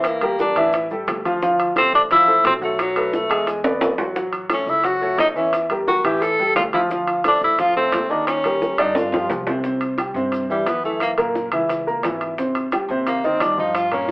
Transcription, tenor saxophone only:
0.06 0.40 A#3 medium
0.41 0.72 D4 medium
1.78 1.93 C4 loud
1.95 2.02 D4 medium
2.12 2.43 E4 loud
2.47 2.54 C4 loud
2.64 2.79 A3 medium
2.81 3.17 F#3 medium
3.15 3.48 A3 medium
4.53 4.71 C#4 loud
4.70 4.87 E4 medium
4.86 5.19 F#4 loud
5.20 5.27 D#4 medium
5.37 5.52 C#4 medium
5.88 6.06 F#4 loud
6.04 6.23 G4 medium
6.22 6.55 A4 loud
6.56 6.64 F4 medium
6.74 6.81 E4 medium
7.28 7.42 D4 loud
7.44 7.62 E4 medium
7.60 7.76 F4 loud
7.77 8.12 C4 loud
8.11 8.27 D4 medium
8.27 8.75 C#4 medium
8.80 8.98 D#4 medium
8.96 9.30 F4 medium
10.51 10.69 G3 medium
10.67 10.84 B3 loud
10.85 11.01 A3 medium
11.02 11.12 A#3 medium
13.08 13.27 A#3 medium
13.25 13.43 C4 medium
13.42 13.58 D4 medium
13.60 13.77 D#4 medium
13.76 13.92 F4 medium
13.93 14.11 C#4 medium

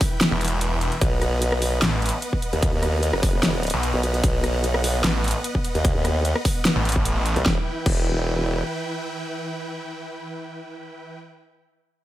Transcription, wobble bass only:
1.01 1.80 B1 loud
2.53 2.71 D#2 loud
2.73 3.12 D#2 medium
3.13 3.72 F#1 loud
3.94 4.22 B1 loud
4.24 5.03 B1 loud
5.75 5.94 D#2 loud
5.95 6.34 D#2 loud
7.36 7.44 C2 loud
7.46 7.57 E1 loud
7.86 8.63 E1 loud

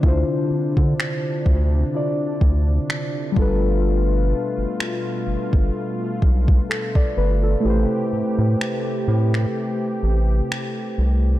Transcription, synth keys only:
0.00 1.87 D3 medium
0.00 1.89 D4 medium
0.00 1.90 E4 medium
0.06 1.91 F4 medium
0.06 1.92 C5 medium
1.92 3.35 D3 medium
1.92 3.33 D4 soft
1.92 3.37 E4 soft
1.92 3.35 F4 soft
1.96 3.38 D5 medium
3.32 7.11 G3 medium
3.32 7.12 D4 medium
3.37 7.13 F4 medium
3.37 6.67 A4 medium
3.42 6.68 B4 medium
6.70 6.94 A4 medium
6.96 7.16 D5 medium
7.18 7.42 B4 medium
7.43 7.88 A4 medium
7.60 11.40 A3 medium
7.60 11.40 E4 medium
7.65 11.40 G4 medium
7.65 11.40 B4 medium
7.70 11.40 C5 medium

